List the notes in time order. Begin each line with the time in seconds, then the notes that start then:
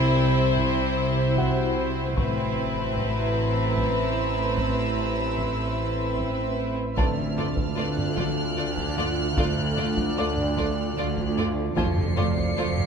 Already playing: C2 C3 C4 E4 C5 E5 A5
0.17 C3
0.57 C3, taiko
0.97 C3
1.37 C3 F#4 F#5, taiko
2.17 A1 A2 C4 E4 B4 E5 A5, taiko
2.57 A2
2.97 A2 A#5, taiko
3.38 A2
3.78 A2 E6, taiko
4.18 A2
4.57 A2, taiko
4.97 A2
5.37 A2, taiko
5.66 B5
5.77 A2
6.17 A2, taiko
6.58 A2
6.97 D2 D3 A3 F4 A4 D5 A5 F6, taiko
7.18 taiko low-mid
7.38 A3 D4 F4 D5, taiko low-mid
7.57 taiko
7.76 D2 A3 D4 F4 D5 F#6
7.98 taiko low-mid
8.16 D3 A3 F4 D5, taiko
8.57 D2 D3 A3 F4 D5
8.77 taiko
8.97 A3 D4 F4 D5, taiko low-mid
9.37 D2 D3 A3 F4 D5, taiko
9.57 taiko low-mid
9.77 A3 D4 F4 D5, taiko low-mid
9.97 taiko
10.18 D2 A3 D4 F4 D5 D6
10.37 taiko low-mid
10.57 D3 A3 F4 D5, taiko
10.97 D2 D3 A3 F4 D5
11.17 taiko
11.37 A3 D4 F4 D5, taiko low-mid
11.77 F1 D2 F2 A3 F4 A4 C5 F5 C7 C#7, taiko
11.97 taiko low-mid
12.17 F3 A3 F4 C5 D5 D6, taiko low-mid
12.37 taiko
12.57 F1 F2 F3 A3 F4 C5
12.77 taiko low-mid